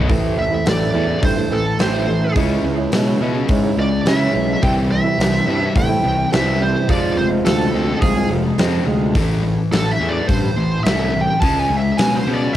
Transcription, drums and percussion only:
0, 0, Header, 1, 2, 480
1, 0, Start_track
1, 0, Key_signature, 0, "minor"
1, 0, Tempo, 566038
1, 83, Time_signature, 4, 2, 24, 8
1, 10659, End_track
2, 0, Start_track
2, 0, Title_t, "Drums"
2, 81, Note_on_c, 9, 36, 109
2, 84, Note_on_c, 9, 46, 50
2, 165, Note_off_c, 9, 36, 0
2, 169, Note_off_c, 9, 46, 0
2, 558, Note_on_c, 9, 46, 56
2, 568, Note_on_c, 9, 38, 107
2, 643, Note_off_c, 9, 46, 0
2, 652, Note_off_c, 9, 38, 0
2, 688, Note_on_c, 9, 38, 28
2, 773, Note_off_c, 9, 38, 0
2, 1042, Note_on_c, 9, 36, 115
2, 1042, Note_on_c, 9, 46, 60
2, 1126, Note_off_c, 9, 36, 0
2, 1127, Note_off_c, 9, 46, 0
2, 1518, Note_on_c, 9, 46, 56
2, 1528, Note_on_c, 9, 38, 102
2, 1603, Note_off_c, 9, 46, 0
2, 1612, Note_off_c, 9, 38, 0
2, 1999, Note_on_c, 9, 46, 52
2, 2001, Note_on_c, 9, 36, 112
2, 2084, Note_off_c, 9, 46, 0
2, 2085, Note_off_c, 9, 36, 0
2, 2475, Note_on_c, 9, 46, 57
2, 2484, Note_on_c, 9, 38, 93
2, 2560, Note_off_c, 9, 46, 0
2, 2569, Note_off_c, 9, 38, 0
2, 2955, Note_on_c, 9, 46, 57
2, 2960, Note_on_c, 9, 36, 108
2, 3040, Note_off_c, 9, 46, 0
2, 3045, Note_off_c, 9, 36, 0
2, 3440, Note_on_c, 9, 46, 49
2, 3450, Note_on_c, 9, 38, 101
2, 3525, Note_off_c, 9, 46, 0
2, 3534, Note_off_c, 9, 38, 0
2, 3925, Note_on_c, 9, 36, 108
2, 3927, Note_on_c, 9, 46, 49
2, 4009, Note_off_c, 9, 36, 0
2, 4012, Note_off_c, 9, 46, 0
2, 4411, Note_on_c, 9, 46, 52
2, 4421, Note_on_c, 9, 38, 100
2, 4496, Note_off_c, 9, 46, 0
2, 4506, Note_off_c, 9, 38, 0
2, 4536, Note_on_c, 9, 38, 32
2, 4621, Note_off_c, 9, 38, 0
2, 4883, Note_on_c, 9, 36, 113
2, 4884, Note_on_c, 9, 46, 57
2, 4967, Note_off_c, 9, 36, 0
2, 4969, Note_off_c, 9, 46, 0
2, 5366, Note_on_c, 9, 46, 54
2, 5375, Note_on_c, 9, 38, 100
2, 5451, Note_off_c, 9, 46, 0
2, 5460, Note_off_c, 9, 38, 0
2, 5842, Note_on_c, 9, 46, 59
2, 5843, Note_on_c, 9, 36, 105
2, 5927, Note_off_c, 9, 46, 0
2, 5928, Note_off_c, 9, 36, 0
2, 6323, Note_on_c, 9, 46, 58
2, 6332, Note_on_c, 9, 38, 103
2, 6407, Note_off_c, 9, 46, 0
2, 6417, Note_off_c, 9, 38, 0
2, 6800, Note_on_c, 9, 46, 59
2, 6801, Note_on_c, 9, 36, 108
2, 6885, Note_off_c, 9, 46, 0
2, 6886, Note_off_c, 9, 36, 0
2, 7278, Note_on_c, 9, 46, 47
2, 7287, Note_on_c, 9, 38, 97
2, 7363, Note_off_c, 9, 46, 0
2, 7372, Note_off_c, 9, 38, 0
2, 7761, Note_on_c, 9, 36, 106
2, 7761, Note_on_c, 9, 46, 56
2, 7845, Note_off_c, 9, 36, 0
2, 7845, Note_off_c, 9, 46, 0
2, 8246, Note_on_c, 9, 46, 49
2, 8255, Note_on_c, 9, 38, 101
2, 8331, Note_off_c, 9, 46, 0
2, 8340, Note_off_c, 9, 38, 0
2, 8724, Note_on_c, 9, 36, 105
2, 8725, Note_on_c, 9, 46, 58
2, 8809, Note_off_c, 9, 36, 0
2, 8810, Note_off_c, 9, 46, 0
2, 9204, Note_on_c, 9, 46, 51
2, 9214, Note_on_c, 9, 38, 104
2, 9289, Note_off_c, 9, 46, 0
2, 9298, Note_off_c, 9, 38, 0
2, 9681, Note_on_c, 9, 46, 61
2, 9682, Note_on_c, 9, 36, 110
2, 9765, Note_off_c, 9, 46, 0
2, 9767, Note_off_c, 9, 36, 0
2, 10159, Note_on_c, 9, 46, 59
2, 10168, Note_on_c, 9, 38, 110
2, 10244, Note_off_c, 9, 46, 0
2, 10253, Note_off_c, 9, 38, 0
2, 10659, End_track
0, 0, End_of_file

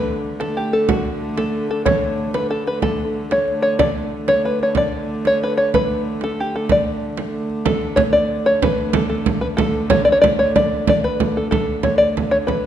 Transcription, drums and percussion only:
0, 0, Header, 1, 2, 480
1, 0, Start_track
1, 0, Tempo, 322061
1, 1310, Time_signature, 6, 3, 24, 8
1, 18873, End_track
2, 0, Start_track
2, 0, Title_t, "Frame drum"
2, 120, Note_on_c, 9, 64, 27
2, 269, Note_off_c, 9, 64, 0
2, 608, Note_on_c, 9, 64, 61
2, 757, Note_off_c, 9, 64, 0
2, 1088, Note_on_c, 9, 64, 25
2, 1237, Note_off_c, 9, 64, 0
2, 1321, Note_on_c, 9, 64, 79
2, 1470, Note_off_c, 9, 64, 0
2, 1568, Note_on_c, 9, 64, 25
2, 1717, Note_off_c, 9, 64, 0
2, 2050, Note_on_c, 9, 64, 61
2, 2199, Note_off_c, 9, 64, 0
2, 2520, Note_on_c, 9, 64, 23
2, 2669, Note_off_c, 9, 64, 0
2, 2773, Note_on_c, 9, 64, 82
2, 2922, Note_off_c, 9, 64, 0
2, 3010, Note_on_c, 9, 64, 25
2, 3159, Note_off_c, 9, 64, 0
2, 3491, Note_on_c, 9, 64, 60
2, 3640, Note_off_c, 9, 64, 0
2, 3977, Note_on_c, 9, 64, 23
2, 4126, Note_off_c, 9, 64, 0
2, 4207, Note_on_c, 9, 64, 66
2, 4356, Note_off_c, 9, 64, 0
2, 4471, Note_on_c, 9, 64, 22
2, 4620, Note_off_c, 9, 64, 0
2, 4935, Note_on_c, 9, 64, 63
2, 5084, Note_off_c, 9, 64, 0
2, 5184, Note_on_c, 9, 64, 26
2, 5333, Note_off_c, 9, 64, 0
2, 5652, Note_on_c, 9, 64, 87
2, 5802, Note_off_c, 9, 64, 0
2, 5895, Note_on_c, 9, 64, 26
2, 6044, Note_off_c, 9, 64, 0
2, 6379, Note_on_c, 9, 64, 65
2, 6528, Note_off_c, 9, 64, 0
2, 6847, Note_on_c, 9, 64, 22
2, 6996, Note_off_c, 9, 64, 0
2, 7077, Note_on_c, 9, 64, 76
2, 7226, Note_off_c, 9, 64, 0
2, 7331, Note_on_c, 9, 64, 22
2, 7480, Note_off_c, 9, 64, 0
2, 7827, Note_on_c, 9, 64, 52
2, 7976, Note_off_c, 9, 64, 0
2, 8305, Note_on_c, 9, 64, 20
2, 8454, Note_off_c, 9, 64, 0
2, 8555, Note_on_c, 9, 64, 68
2, 8704, Note_off_c, 9, 64, 0
2, 8795, Note_on_c, 9, 64, 21
2, 8944, Note_off_c, 9, 64, 0
2, 9256, Note_on_c, 9, 64, 49
2, 9405, Note_off_c, 9, 64, 0
2, 9752, Note_on_c, 9, 64, 22
2, 9901, Note_off_c, 9, 64, 0
2, 9976, Note_on_c, 9, 64, 70
2, 10125, Note_off_c, 9, 64, 0
2, 10693, Note_on_c, 9, 64, 60
2, 10842, Note_off_c, 9, 64, 0
2, 11172, Note_on_c, 9, 64, 24
2, 11321, Note_off_c, 9, 64, 0
2, 11411, Note_on_c, 9, 64, 81
2, 11560, Note_off_c, 9, 64, 0
2, 11647, Note_on_c, 9, 64, 25
2, 11796, Note_off_c, 9, 64, 0
2, 11881, Note_on_c, 9, 64, 89
2, 12030, Note_off_c, 9, 64, 0
2, 12132, Note_on_c, 9, 64, 26
2, 12281, Note_off_c, 9, 64, 0
2, 12854, Note_on_c, 9, 64, 87
2, 13003, Note_off_c, 9, 64, 0
2, 13091, Note_on_c, 9, 64, 28
2, 13240, Note_off_c, 9, 64, 0
2, 13315, Note_on_c, 9, 64, 93
2, 13464, Note_off_c, 9, 64, 0
2, 13562, Note_on_c, 9, 64, 26
2, 13711, Note_off_c, 9, 64, 0
2, 13803, Note_on_c, 9, 64, 91
2, 13952, Note_off_c, 9, 64, 0
2, 14284, Note_on_c, 9, 64, 90
2, 14433, Note_off_c, 9, 64, 0
2, 14516, Note_on_c, 9, 64, 28
2, 14665, Note_off_c, 9, 64, 0
2, 14753, Note_on_c, 9, 64, 94
2, 14903, Note_off_c, 9, 64, 0
2, 15009, Note_on_c, 9, 64, 28
2, 15158, Note_off_c, 9, 64, 0
2, 15256, Note_on_c, 9, 64, 83
2, 15405, Note_off_c, 9, 64, 0
2, 15734, Note_on_c, 9, 64, 80
2, 15883, Note_off_c, 9, 64, 0
2, 16207, Note_on_c, 9, 64, 87
2, 16356, Note_off_c, 9, 64, 0
2, 16453, Note_on_c, 9, 64, 25
2, 16602, Note_off_c, 9, 64, 0
2, 16695, Note_on_c, 9, 64, 80
2, 16844, Note_off_c, 9, 64, 0
2, 17172, Note_on_c, 9, 64, 76
2, 17321, Note_off_c, 9, 64, 0
2, 17401, Note_on_c, 9, 64, 23
2, 17551, Note_off_c, 9, 64, 0
2, 17635, Note_on_c, 9, 64, 79
2, 17784, Note_off_c, 9, 64, 0
2, 17888, Note_on_c, 9, 64, 22
2, 18037, Note_off_c, 9, 64, 0
2, 18139, Note_on_c, 9, 64, 69
2, 18288, Note_off_c, 9, 64, 0
2, 18604, Note_on_c, 9, 64, 66
2, 18753, Note_off_c, 9, 64, 0
2, 18873, End_track
0, 0, End_of_file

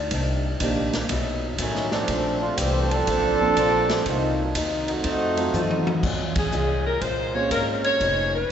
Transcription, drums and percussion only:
0, 0, Header, 1, 2, 480
1, 0, Start_track
1, 0, Tempo, 493421
1, 112, Time_signature, 4, 2, 24, 8
1, 8284, End_track
2, 0, Start_track
2, 0, Title_t, "Drums"
2, 105, Note_on_c, 9, 51, 63
2, 111, Note_on_c, 9, 36, 24
2, 202, Note_off_c, 9, 51, 0
2, 208, Note_off_c, 9, 36, 0
2, 584, Note_on_c, 9, 44, 54
2, 584, Note_on_c, 9, 51, 72
2, 589, Note_on_c, 9, 36, 24
2, 681, Note_off_c, 9, 44, 0
2, 681, Note_off_c, 9, 51, 0
2, 687, Note_off_c, 9, 36, 0
2, 908, Note_on_c, 9, 51, 46
2, 910, Note_on_c, 9, 38, 50
2, 1005, Note_off_c, 9, 51, 0
2, 1007, Note_off_c, 9, 38, 0
2, 1061, Note_on_c, 9, 51, 64
2, 1068, Note_on_c, 9, 36, 23
2, 1158, Note_off_c, 9, 51, 0
2, 1166, Note_off_c, 9, 36, 0
2, 1541, Note_on_c, 9, 44, 58
2, 1541, Note_on_c, 9, 51, 70
2, 1548, Note_on_c, 9, 36, 25
2, 1638, Note_off_c, 9, 44, 0
2, 1638, Note_off_c, 9, 51, 0
2, 1645, Note_off_c, 9, 36, 0
2, 1709, Note_on_c, 9, 38, 29
2, 1806, Note_off_c, 9, 38, 0
2, 1862, Note_on_c, 9, 38, 44
2, 1960, Note_off_c, 9, 38, 0
2, 2021, Note_on_c, 9, 51, 60
2, 2027, Note_on_c, 9, 36, 22
2, 2119, Note_off_c, 9, 51, 0
2, 2124, Note_off_c, 9, 36, 0
2, 2505, Note_on_c, 9, 44, 69
2, 2505, Note_on_c, 9, 51, 73
2, 2508, Note_on_c, 9, 36, 23
2, 2603, Note_off_c, 9, 44, 0
2, 2603, Note_off_c, 9, 51, 0
2, 2605, Note_off_c, 9, 36, 0
2, 2833, Note_on_c, 9, 51, 48
2, 2930, Note_off_c, 9, 51, 0
2, 2988, Note_on_c, 9, 51, 65
2, 2989, Note_on_c, 9, 36, 22
2, 3085, Note_off_c, 9, 51, 0
2, 3086, Note_off_c, 9, 36, 0
2, 3469, Note_on_c, 9, 36, 23
2, 3469, Note_on_c, 9, 44, 57
2, 3469, Note_on_c, 9, 51, 75
2, 3566, Note_off_c, 9, 44, 0
2, 3566, Note_off_c, 9, 51, 0
2, 3567, Note_off_c, 9, 36, 0
2, 3788, Note_on_c, 9, 51, 46
2, 3790, Note_on_c, 9, 38, 60
2, 3885, Note_off_c, 9, 51, 0
2, 3887, Note_off_c, 9, 38, 0
2, 3946, Note_on_c, 9, 51, 59
2, 3948, Note_on_c, 9, 36, 18
2, 4043, Note_off_c, 9, 51, 0
2, 4045, Note_off_c, 9, 36, 0
2, 4425, Note_on_c, 9, 44, 59
2, 4425, Note_on_c, 9, 51, 72
2, 4429, Note_on_c, 9, 36, 19
2, 4523, Note_off_c, 9, 44, 0
2, 4523, Note_off_c, 9, 51, 0
2, 4526, Note_off_c, 9, 36, 0
2, 4747, Note_on_c, 9, 51, 47
2, 4844, Note_off_c, 9, 51, 0
2, 4901, Note_on_c, 9, 51, 64
2, 4908, Note_on_c, 9, 36, 23
2, 4998, Note_off_c, 9, 51, 0
2, 5005, Note_off_c, 9, 36, 0
2, 5226, Note_on_c, 9, 51, 49
2, 5324, Note_off_c, 9, 51, 0
2, 5385, Note_on_c, 9, 44, 55
2, 5387, Note_on_c, 9, 48, 48
2, 5483, Note_off_c, 9, 44, 0
2, 5485, Note_off_c, 9, 48, 0
2, 5551, Note_on_c, 9, 48, 62
2, 5648, Note_off_c, 9, 48, 0
2, 5709, Note_on_c, 9, 48, 80
2, 5806, Note_off_c, 9, 48, 0
2, 5867, Note_on_c, 9, 36, 63
2, 5869, Note_on_c, 9, 49, 60
2, 5965, Note_off_c, 9, 36, 0
2, 5967, Note_off_c, 9, 49, 0
2, 6183, Note_on_c, 9, 51, 65
2, 6187, Note_on_c, 9, 36, 70
2, 6280, Note_off_c, 9, 51, 0
2, 6284, Note_off_c, 9, 36, 0
2, 6341, Note_on_c, 9, 44, 53
2, 6438, Note_off_c, 9, 44, 0
2, 6824, Note_on_c, 9, 51, 49
2, 6825, Note_on_c, 9, 36, 22
2, 6921, Note_off_c, 9, 51, 0
2, 6922, Note_off_c, 9, 36, 0
2, 7305, Note_on_c, 9, 36, 17
2, 7305, Note_on_c, 9, 44, 49
2, 7305, Note_on_c, 9, 51, 62
2, 7402, Note_off_c, 9, 44, 0
2, 7402, Note_off_c, 9, 51, 0
2, 7403, Note_off_c, 9, 36, 0
2, 7630, Note_on_c, 9, 51, 40
2, 7727, Note_off_c, 9, 51, 0
2, 7787, Note_on_c, 9, 36, 22
2, 7788, Note_on_c, 9, 51, 51
2, 7884, Note_off_c, 9, 36, 0
2, 7885, Note_off_c, 9, 51, 0
2, 8284, End_track
0, 0, End_of_file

